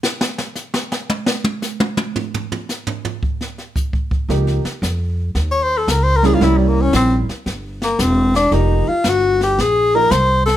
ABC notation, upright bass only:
X:1
M:4/4
L:1/8
Q:"Swing" 1/4=113
K:Dblyd
V:1 name="Upright bass" clef=bass
z8 | z8 | D,, z F,,2 E,,2 D,,2 | C,,2 B,,, z G,,,2 =E,,,2 |
F,,, z G,,,2 B,,,2 C,,2 |]